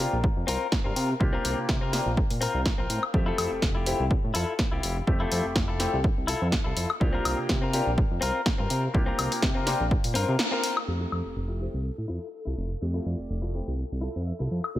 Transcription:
Already playing: clean electric guitar C4 F4 A#4
0.00 grand piano A#3 D4 F4 G4, open hi-hat
0.13 analog synth bass A#1
0.24 kick
0.37 analog synth bass F2
0.47 analog synth bass C2, clean electric guitar C4 F4 A#4, open hi-hat
0.72 kick, snare
0.84 analog synth bass G2, clean electric guitar C4 F4 A#4
0.96 analog synth bass C3, open hi-hat
1.20 analog synth bass C2, grand piano A#3 D4 F4 G4, kick
1.33 clean electric guitar C4 F4 A#4
1.45 analog synth bass C2, open hi-hat
1.58 analog synth bass C3
1.69 analog synth bass C3, kick, snare
1.81 clean electric guitar C4 F4 A#4
1.93 grand piano A#3 D4 F4 G4, snare, open hi-hat
2.06 analog synth bass A#1
2.17 kick
2.30 analog synth bass A#2, open hi-hat
2.41 clean electric guitar C4 F4 A#4, open hi-hat
2.54 analog synth bass C2
2.66 kick, snare
2.78 analog synth bass A#1, clean electric guitar C4 F4 A#4
2.90 analog synth bass A2, open hi-hat
3.03 high woodblock
3.14 analog synth bass F2, grand piano A3 C4 G4 E5, kick
3.26 clean electric guitar E4 F4 A4
3.38 analog synth bass F2, open hi-hat, high woodblock
3.51 analog synth bass F1
3.62 analog synth bass F1, kick, snare
3.75 clean electric guitar E4 F4 G4
3.86 grand piano A3 C4 E4 G4, open hi-hat
4.00 analog synth bass C2
4.11 kick
4.24 analog synth bass A2
4.34 analog synth bass F2, clean electric guitar E4 F4 A4, open hi-hat
4.59 kick, snare
4.72 analog synth bass C2, clean electric guitar E4 F4 G4
4.83 analog synth bass F1, open hi-hat
5.07 analog synth bass F2, grand piano A3 C4 G4 E5, kick
5.20 clean electric guitar E4 F4 A4
5.32 analog synth bass F2, open hi-hat
5.45 analog synth bass F1
5.56 analog synth bass F1, kick, snare
5.68 clean electric guitar E4 F4 A4
5.79 grand piano A3 C4 E4 G4, snare, open hi-hat
5.93 analog synth bass C2
6.04 kick
6.18 analog synth bass C2
6.27 clean electric guitar E4 F4 A4, open hi-hat
6.42 analog synth bass F2
6.52 kick, snare
6.64 analog synth bass C2, clean electric guitar E4 F4 A4
6.77 analog synth bass F2, open hi-hat
6.90 high woodblock
7.00 analog synth bass C2, grand piano A#3 D4 F4 G4, kick
7.13 clean electric guitar C4 F4 A#4
7.25 analog synth bass C2, open hi-hat, high woodblock
7.38 analog synth bass C3
7.49 analog synth bass C3, kick, snare
7.62 clean electric guitar C4 F4 A#4
7.73 grand piano A#3 D4 F4 G4, open hi-hat
7.87 analog synth bass A#1
7.98 kick
8.11 analog synth bass F2
8.21 analog synth bass C2, clean electric guitar C4 F4 A#4, open hi-hat
8.46 kick, snare
8.58 analog synth bass G2, clean electric guitar C4 F4 A#4
8.70 analog synth bass C3, open hi-hat
8.94 analog synth bass C2, grand piano A#3 D4 F4 G4, kick
9.06 clean electric guitar C4 F4 A#4
9.19 analog synth bass C2, open hi-hat, high woodblock
9.32 analog synth bass C3, open hi-hat
9.42 analog synth bass C3, kick, snare
9.55 clean electric guitar C4 F4 A#4
9.67 grand piano A#3 D4 F4 G4, snare, open hi-hat
9.80 analog synth bass A#1
9.91 kick
10.04 analog synth bass A#2, open hi-hat
10.14 analog synth bass G2, clean electric guitar C4 F4 A#4, open hi-hat
10.28 analog synth bass C3
10.39 snare
10.51 clean electric guitar C4 F4 A#4
10.64 open hi-hat
10.77 high woodblock
10.87 analog synth bass F2, grand piano A3 C4 G4 E5, string machine A4 E6, crash
10.99 clean electric guitar E4 F4 A4
11.12 analog synth bass F2, high woodblock
11.25 analog synth bass F1
11.36 analog synth bass F1
11.48 clean electric guitar E4 F4 G4
11.60 grand piano A3 C4 E4 G4
11.74 analog synth bass C2
11.83 trumpet section A4, muted clean electric guitar stroke
11.98 analog synth bass A2
12.08 analog synth bass F2, clean electric guitar E4 F4 A4
12.45 analog synth bass C2, clean electric guitar E4 F4 A4
12.58 analog synth bass F1
12.81 analog synth bass F2, grand piano A3 C4 G4 E5
12.94 clean electric guitar E4 F4 A4
13.05 analog synth bass F2, trumpet section D5
13.19 analog synth bass F1
13.30 analog synth bass F1
13.42 clean electric guitar E4 F4 A4
13.54 grand piano A3 C4 E4 G4
13.68 analog synth bass C2
13.77 muted clean electric guitar stroke
13.92 analog synth bass C2
14.01 clean electric guitar E4 F4 A4
14.16 analog synth bass F2
14.27 clean electric guitar E5
14.39 analog synth bass C2, clean electric guitar E4 F4 A4
14.51 analog synth bass F2
14.64 high woodblock
14.75 analog synth bass C2, grand piano A#3 D4 F4 G4, string machine A#4 C6

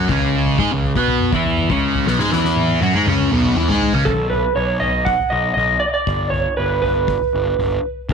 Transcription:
0.09 picked electric bass C#2, distorted electric guitar C#3 C#4, kick, floor tom
0.21 floor tom
0.46 floor tom
0.59 picked electric bass G#2, distorted electric guitar G#3 G#4, kick
0.71 picked electric bass C#2, distorted electric guitar C#3
0.83 floor tom
0.96 picked electric bass B2, distorted electric guitar B3 B4, kick
1.08 floor tom
1.20 mid tom
1.33 picked electric bass E2, distorted electric guitar E3 E4, kick
1.44 floor tom
1.57 mid tom
1.70 picked electric bass C#2, distorted electric guitar C#3 C#4, kick, floor tom
1.95 floor tom
2.07 picked electric bass B1, distorted electric guitar B2 B3, snare
2.19 picked electric bass G#2, distorted electric guitar G#3 G#4, snare
2.31 picked electric bass E2, distorted electric guitar E3 E4, snare
2.44 snare
2.56 high tom
2.68 high tom
2.81 picked electric bass F#2, distorted electric guitar F#3 F#4, high tom
2.93 picked electric bass G#2, distorted electric guitar G#3 G#4, mid tom
3.06 picked electric bass C#2, distorted electric guitar C#3 C#4, mid tom
3.19 mid tom
3.31 picked electric bass B1, distorted electric guitar B2 B3, mid tom
3.44 mid tom
3.56 picked electric bass E2, distorted electric guitar E3 E4, mid tom
3.68 picked electric bass G#2, distorted electric guitar G#3 G#4, floor tom
3.81 floor tom
3.93 picked electric bass C#2, distorted electric guitar C#3 C#4, floor tom
4.05 picked electric bass B1, electric slide guitar A4, kick, floor tom, crash
4.30 electric slide guitar B4, floor tom
4.56 picked electric bass B1, electric slide guitar C#5
4.80 electric slide guitar D#5, floor tom
5.05 electric slide guitar F#5, kick
5.19 floor tom
5.30 picked electric bass B1, electric slide guitar D#5
5.54 picked electric bass B1, electric slide guitar D#5, floor tom
5.80 electric slide guitar D5
5.88 electric slide guitar D#5
5.94 electric slide guitar D5
6.07 picked electric bass G1, kick, floor tom
6.30 electric slide guitar C#5, floor tom
6.57 picked electric bass G1, electric slide guitar B4
6.82 electric slide guitar B4, floor tom
7.08 kick
7.21 floor tom
7.34 picked electric bass G1
7.59 picked electric bass G1, floor tom
8.09 picked electric bass D#2, kick, floor tom

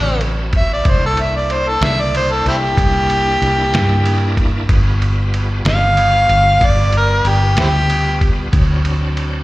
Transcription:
Already playing: fingered electric bass A1, tonewheel organ F#3 C4 E5, harmonica D4
0.21 ride
0.53 kick, ride
0.57 harmonica E5
0.73 harmonica D5
0.83 fingered electric bass C2, tonewheel organ A#3 D4 E4, kick, ride
0.90 harmonica C5
1.06 harmonica A4
1.17 harmonica E5, ride
1.36 harmonica D5
1.50 harmonica C5, ride
1.68 harmonica A4
1.81 fingered electric bass C2, harmonica E5, snare, ride
2.01 harmonica D5
2.15 harmonica C5, ride
2.32 harmonica A4
2.46 fingered electric bass C2, harmonica C4 E4 G4, ride
2.78 fingered electric bass C2, kick, ride
3.10 ride
3.42 fingered electric bass C2, ride
3.74 fingered electric bass G2, snare, ride
4.06 ride
4.37 kick, ride
4.69 fingered electric bass G1, tonewheel organ G3 B3 F4, kick, ride
5.02 ride
5.34 ride
5.65 fingered electric bass G1, harmonica F5, snare, ride
5.97 ride
6.29 fingered electric bass G1, ride
6.61 fingered electric bass G1, kick, ride
6.65 harmonica D5
6.93 ride
6.97 harmonica A#4
7.25 fingered electric bass G1, harmonica G4, ride
7.56 fingered electric bass D2, snare, ride
7.61 harmonica C4 E4 G4
7.90 ride
8.21 kick, ride
8.52 fingered electric bass D2, tonewheel organ F#3 C4 D4, kick, ride
8.85 ride
9.17 ride

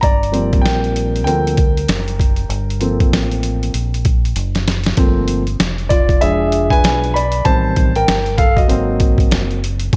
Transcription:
0.01 fingered electric bass G1, grand piano D5 A#5, kick, closed hi-hat
0.23 closed hi-hat
0.32 grand piano F3 G3 A#3 C4, closed hi-hat
0.53 kick, closed hi-hat
0.61 fingered electric bass A#1, grand piano A#4 G5
0.66 snare, closed hi-hat
0.84 closed hi-hat
0.96 closed hi-hat
1.16 closed hi-hat
1.24 fingered electric bass D2, grand piano F3 A#3 C4 A4 A#4 G5, closed hi-hat
1.47 closed hi-hat
1.57 kick, closed hi-hat
1.77 closed hi-hat
1.88 fingered electric bass F#1, snare, closed hi-hat
2.08 closed hi-hat
2.20 kick, closed hi-hat
2.36 closed hi-hat
2.49 fingered electric bass G1, closed hi-hat
2.70 closed hi-hat
2.80 grand piano F3 A#3 C4 A4, closed hi-hat
3.00 kick, closed hi-hat
3.12 fingered electric bass A1, snare, closed hi-hat
3.31 closed hi-hat
3.43 closed hi-hat
3.63 closed hi-hat
3.74 fingered electric bass A#1, closed hi-hat
3.94 closed hi-hat
4.05 kick, closed hi-hat
4.25 closed hi-hat
4.36 fingered electric bass F#1, closed hi-hat
4.55 snare, closed hi-hat
4.68 snare, closed hi-hat
4.84 snare, closed hi-hat
4.97 fingered electric bass G1, grand piano F3 A3 A#3 C4, kick, closed hi-hat
5.28 closed hi-hat
5.47 closed hi-hat
5.60 fingered electric bass F1, snare, closed hi-hat
5.78 closed hi-hat
5.89 grand piano F4 D5, kick, closed hi-hat
6.09 kick, closed hi-hat
6.21 fingered electric bass E1, grand piano F3 G#3 D4 G#4 E5, closed hi-hat
6.52 closed hi-hat
6.70 grand piano B4 G#5, kick, closed hi-hat
6.83 fingered electric bass B1, snare, closed hi-hat
7.04 closed hi-hat
7.14 grand piano D5 B5, closed hi-hat
7.32 closed hi-hat
7.44 fingered electric bass A1, grand piano D#3 G3 C4 C5 A5, kick, closed hi-hat
7.76 kick, closed hi-hat
7.95 grand piano A#4 G5, closed hi-hat
8.08 fingered electric bass G1, snare, closed hi-hat
8.26 closed hi-hat
8.38 grand piano A4 F5, kick, closed hi-hat
8.56 grand piano F#4 D#5, kick, closed hi-hat
8.68 fingered electric bass G#1, grand piano F#3 A#3 C4, closed hi-hat
9.00 kick, closed hi-hat
9.18 kick, closed hi-hat
9.31 fingered electric bass F#1, snare, closed hi-hat
9.51 closed hi-hat
9.64 closed hi-hat
9.80 closed hi-hat
9.93 fingered electric bass G1, kick, closed hi-hat

